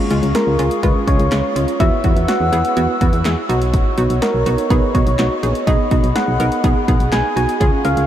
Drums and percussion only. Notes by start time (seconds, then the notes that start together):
0.10 closed hi-hat
0.23 closed hi-hat
0.35 snare, closed hi-hat
0.59 closed hi-hat
0.71 closed hi-hat
0.83 kick, closed hi-hat
1.08 kick, closed hi-hat
1.19 closed hi-hat
1.32 snare, clap, closed hi-hat
1.56 closed hi-hat
1.68 closed hi-hat
1.80 kick, closed hi-hat
2.04 kick, closed hi-hat
2.17 closed hi-hat
2.28 snare, closed hi-hat
2.53 closed hi-hat
2.65 closed hi-hat
2.77 closed hi-hat
3.01 kick, closed hi-hat
3.13 closed hi-hat
3.25 snare, clap, closed hi-hat
3.50 closed hi-hat
3.62 closed hi-hat
3.74 kick, closed hi-hat
3.98 closed hi-hat
4.10 closed hi-hat
4.22 snare, closed hi-hat
4.46 closed hi-hat
4.58 closed hi-hat
4.70 kick, closed hi-hat
4.95 kick, closed hi-hat
5.07 closed hi-hat
5.19 snare, clap, closed hi-hat
5.43 closed hi-hat
5.55 closed hi-hat
5.67 kick, closed hi-hat
5.91 kick, closed hi-hat
6.04 closed hi-hat
6.16 snare, closed hi-hat
6.40 closed hi-hat
6.52 closed hi-hat
6.64 kick, closed hi-hat
6.88 kick, closed hi-hat
7.00 closed hi-hat
7.12 snare, clap, closed hi-hat
7.37 closed hi-hat
7.49 closed hi-hat
7.61 kick, closed hi-hat
7.85 closed hi-hat
7.97 closed hi-hat